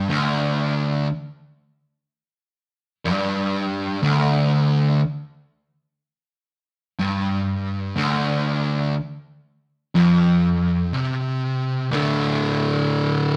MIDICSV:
0, 0, Header, 1, 2, 480
1, 0, Start_track
1, 0, Key_signature, -1, "minor"
1, 0, Tempo, 985222
1, 47, Time_signature, 4, 2, 24, 8
1, 6512, End_track
2, 0, Start_track
2, 0, Title_t, "Distorted electric guitar"
2, 0, Program_c, 0, 30
2, 45, Note_on_c, 0, 38, 117
2, 519, Note_off_c, 0, 38, 0
2, 1487, Note_on_c, 0, 43, 107
2, 1960, Note_off_c, 0, 43, 0
2, 1962, Note_on_c, 0, 38, 116
2, 2437, Note_off_c, 0, 38, 0
2, 3407, Note_on_c, 0, 43, 103
2, 3876, Note_off_c, 0, 43, 0
2, 3878, Note_on_c, 0, 38, 118
2, 4354, Note_off_c, 0, 38, 0
2, 4847, Note_on_c, 0, 41, 116
2, 5318, Note_off_c, 0, 41, 0
2, 5327, Note_on_c, 0, 48, 98
2, 5798, Note_off_c, 0, 48, 0
2, 5804, Note_on_c, 0, 38, 93
2, 5810, Note_on_c, 0, 45, 89
2, 5818, Note_on_c, 0, 50, 106
2, 6512, Note_off_c, 0, 38, 0
2, 6512, Note_off_c, 0, 45, 0
2, 6512, Note_off_c, 0, 50, 0
2, 6512, End_track
0, 0, End_of_file